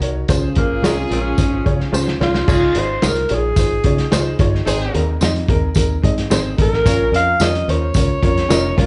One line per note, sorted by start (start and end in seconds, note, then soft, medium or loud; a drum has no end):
0.00 0.23 C2 medium
0.00 0.21 D#4 medium
0.00 0.21 F#4 medium
0.00 0.21 A#4 medium
0.00 0.21 C#5 medium
0.00 closed hi-hat medium
0.28 0.51 C#2 medium
0.28 1.07 C#3 medium
0.28 0.48 C#4 loud
0.28 2.17 C#4 medium
0.28 0.48 F4 loud
0.28 2.17 F4 medium
0.28 0.48 G#4 loud
0.28 2.17 G#4 medium
0.28 0.48 C5 loud
0.28 kick loud
0.28 closed hi-hat medium
0.28 tambourine medium
0.55 0.78 G#1 medium
0.55 0.82 A#3 loud
0.55 0.75 C#4 medium
0.55 0.75 F4 medium
0.55 0.76 G#4 medium
0.55 0.76 C5 medium
0.55 kick loud
0.55 closed hi-hat medium
0.82 1.05 C2 medium
0.82 0.93 G#3 medium
0.82 0.97 G#3 medium
0.82 1.02 C#4 medium
0.82 0.93 C#4 medium
0.82 0.97 C#4 medium
0.82 1.02 F4 medium
0.82 0.94 F4 medium
0.82 1.02 G#4 medium
0.82 0.97 A#4 medium
0.82 0.94 C5 medium
0.82 1.03 C#5 loud
0.82 snare loud
0.82 closed hi-hat medium
0.82 tambourine medium
0.97 1.10 C4 medium
0.97 1.10 G#4 medium
1.09 1.33 A#1 medium
1.09 1.37 G#3 medium
1.09 1.29 C#4 medium
1.09 1.90 C#4 loud
1.09 1.30 F4 medium
1.09 1.37 F4 medium
1.09 1.30 G#4 medium
1.09 1.30 A#4 medium
1.09 closed hi-hat medium
1.37 1.60 G#1 medium
1.37 1.57 C#4 medium
1.37 1.51 D#4 medium
1.37 1.57 F4 medium
1.37 1.57 G#4 medium
1.37 1.57 C5 medium
1.37 kick loud
1.37 closed hi-hat medium
1.37 tambourine medium
1.53 2.31 F3 medium
1.53 2.30 C#4 medium
1.65 1.88 C#3 medium
1.65 1.84 C#4 medium
1.65 1.84 F4 medium
1.65 1.85 G#4 medium
1.65 1.85 C#5 medium
1.65 kick medium
1.65 closed hi-hat medium
1.80 snare soft
1.92 2.15 C#2 medium
1.92 2.02 G#3 medium
1.92 2.12 C#4 loud
1.92 2.03 C#4 medium
1.92 2.12 F4 loud
1.92 2.03 F4 medium
1.92 2.12 G#4 medium
1.92 2.12 C5 loud
1.92 2.03 C5 loud
1.92 tambourine loud
2.08 snare medium
2.20 2.43 C2 medium
2.20 2.39 C#4 medium
2.20 2.39 F4 medium
2.20 2.81 F4 loud
2.20 2.39 G#4 medium
2.20 2.40 C#5 medium
2.20 snare medium
2.34 snare medium
2.46 2.70 C#2 medium
2.46 3.25 C#3 medium
2.46 2.66 D#4 medium
2.46 2.87 D#4 medium
2.46 2.67 F4 medium
2.46 2.87 F4 medium
2.46 2.67 G#4 medium
2.46 2.87 G#4 loud
2.46 2.67 C#5 loud
2.46 kick loud
2.46 crash medium
2.46 tambourine medium
2.74 2.97 G#1 medium
2.74 2.94 D#4 medium
2.74 2.94 F4 medium
2.74 2.94 G#4 medium
2.74 2.94 D#5 medium
2.74 closed hi-hat medium
2.79 3.04 C5 loud
3.02 3.25 C2 medium
3.02 3.12 G#3 medium
3.02 3.21 D#4 medium
3.02 3.12 D#4 medium
3.02 3.22 F4 medium
3.02 3.13 F4 medium
3.02 3.22 G#4 medium
3.02 3.22 C5 medium
3.02 3.13 C#5 loud
3.02 snare loud
3.02 closed hi-hat medium
3.02 tambourine medium
3.06 3.36 A#4 medium
3.15 closed hi-hat soft
3.29 3.53 A#1 medium
3.29 3.49 D#4 medium
3.29 3.49 F4 medium
3.29 3.49 G#4 medium
3.29 3.50 C#5 medium
3.29 closed hi-hat medium
3.34 4.42 G#4 loud
3.56 3.79 G#1 loud
3.56 3.76 D#4 medium
3.56 3.76 F4 medium
3.56 3.77 G#4 medium
3.56 3.77 C5 medium
3.56 kick medium
3.56 closed hi-hat medium
3.56 tambourine medium
3.84 4.06 C#3 medium
3.84 4.04 D#4 medium
3.84 4.04 F4 medium
3.84 4.04 G#4 medium
3.84 4.04 C#5 medium
3.84 kick medium
3.84 closed hi-hat medium
3.98 snare soft
3.98 closed hi-hat soft
4.11 4.34 C#2 medium
4.11 4.22 G#3 medium
4.11 4.31 D#4 loud
4.11 4.22 D#4 medium
4.11 4.31 F4 loud
4.11 4.22 F4 medium
4.11 4.31 G#4 loud
4.11 4.31 C5 loud
4.11 4.22 C#5 medium
4.11 snare loud
4.11 closed hi-hat medium
4.11 tambourine loud
4.39 4.61 G1 medium
4.39 4.58 D#4 loud
4.39 4.59 F4 medium
4.39 4.59 G#4 medium
4.39 4.59 C#5 loud
4.39 kick loud
4.39 closed hi-hat medium
4.55 snare soft
4.66 4.89 G#1 loud
4.66 5.45 G#2 medium
4.66 4.86 C4 loud
4.66 5.06 C4 medium
4.66 5.06 D#4 loud
4.66 4.86 D#4 medium
4.66 5.06 G#4 loud
4.66 4.86 G#4 medium
4.66 4.86 C5 loud
4.66 closed hi-hat medium
4.66 tambourine medium
4.94 5.17 D#2 medium
4.94 5.13 C4 medium
4.94 5.13 D#4 medium
4.94 5.13 G#4 medium
4.94 5.14 A#4 medium
4.94 closed hi-hat medium
5.21 5.44 F2 medium
5.21 5.31 C4 medium
5.21 5.41 C4 medium
5.21 5.41 D#4 medium
5.21 5.31 D#4 medium
5.21 5.31 G#4 medium
5.21 5.41 G#4 medium
5.21 5.32 C5 medium
5.21 5.41 D#5 medium
5.21 snare loud
5.21 closed hi-hat medium
5.21 tambourine medium
5.36 closed hi-hat soft
5.48 5.71 D#2 medium
5.48 5.68 C4 medium
5.48 5.68 D#4 medium
5.48 5.68 G#4 medium
5.48 5.68 A#4 loud
5.48 kick loud
5.48 closed hi-hat medium
5.75 5.98 D#2 medium
5.75 5.95 C4 medium
5.75 5.95 D#4 medium
5.75 5.95 G#4 medium
5.75 5.96 A#4 loud
5.75 kick medium
5.75 closed hi-hat medium
5.75 tambourine medium
6.02 6.26 G#2 loud
6.02 6.22 C4 medium
6.02 6.23 D#4 medium
6.02 6.23 G#4 medium
6.02 6.23 D#5 loud
6.02 kick medium
6.02 closed hi-hat medium
6.18 snare soft
6.18 closed hi-hat soft
6.30 6.53 G#1 medium
6.30 6.40 C4 medium
6.30 6.50 C4 loud
6.30 6.50 D#4 loud
6.30 6.41 D#4 medium
6.30 6.50 G#4 loud
6.30 6.41 G#4 loud
6.30 6.51 C5 loud
6.30 6.41 C5 loud
6.30 snare loud
6.30 closed hi-hat medium
6.30 tambourine loud
6.57 6.81 A1 medium
6.57 6.77 C4 medium
6.57 6.77 D#4 medium
6.57 6.77 G#4 medium
6.57 6.77 A#4 medium
6.57 kick medium
6.57 closed hi-hat medium
6.62 7.11 A#4 loud
6.73 snare soft
6.85 7.08 A#1 loud
6.85 7.64 A#2 medium
6.85 7.24 C#4 loud
6.85 7.05 C#4 loud
6.85 7.24 F4 medium
6.85 7.05 F4 medium
6.85 7.24 A#4 loud
6.85 7.05 A#4 medium
6.85 7.05 C#5 loud
6.85 kick loud
6.85 closed hi-hat loud
6.85 tambourine medium
7.11 7.34 F2 medium
7.11 7.32 C#4 medium
7.11 7.32 F4 medium
7.11 7.32 A#4 medium
7.11 7.32 D#5 medium
7.11 closed hi-hat medium
7.16 7.44 F5 loud
7.40 7.62 F2 medium
7.40 7.50 C#4 medium
7.40 7.60 C#4 medium
7.40 7.59 F4 medium
7.40 7.50 F4 medium
7.40 7.60 A#4 medium
7.40 7.50 A#4 medium
7.40 7.60 C#5 medium
7.40 7.51 C#5 medium
7.40 7.69 D#5 loud
7.40 snare loud
7.40 closed hi-hat medium
7.40 tambourine loud
7.55 closed hi-hat soft
7.68 7.90 D#2 medium
7.68 7.87 C#4 medium
7.68 7.87 F4 medium
7.68 7.87 A#4 medium
7.68 7.88 C5 medium
7.68 8.81 C#5 loud
7.68 closed hi-hat medium
7.94 8.17 C#2 medium
7.94 8.14 C#4 medium
7.94 8.15 F4 medium
7.94 8.15 A#4 medium
7.94 8.15 C#5 medium
7.94 kick loud
7.94 closed hi-hat loud
7.94 tambourine medium
8.22 8.45 F2 medium
8.22 8.42 C#4 medium
8.22 8.42 F4 medium
8.22 8.42 A#4 medium
8.22 8.42 C#5 medium
8.22 kick medium
8.22 closed hi-hat medium
8.37 snare soft
8.37 closed hi-hat soft
8.49 8.72 F1 medium
8.49 8.59 C#4 medium
8.49 8.69 C#4 loud
8.49 8.59 F4 loud
8.49 8.69 F4 loud
8.49 8.69 A#4 loud
8.49 8.60 A#4 medium
8.49 8.60 C#5 loud
8.49 8.70 D#5 loud
8.49 snare loud
8.49 closed hi-hat medium
8.49 tambourine loud
8.64 8.77 D#4 medium
8.77 8.86 C2 medium
8.77 8.86 G#3 medium
8.77 8.86 C#4 medium
8.77 8.86 F4 medium
8.77 8.86 A#4 medium
8.77 8.86 C#5 loud
8.77 kick loud
8.77 closed hi-hat medium